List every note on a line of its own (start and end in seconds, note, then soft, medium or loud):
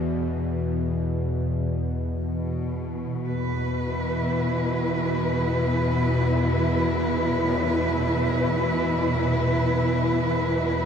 0.00 2.24 E2 medium
0.00 2.23 B2 medium
2.22 10.85 E2 medium
2.22 10.85 B2 medium
3.28 10.85 B4 medium
3.86 10.85 E4 medium
3.98 10.85 E3 medium
7.43 10.85 F#3 medium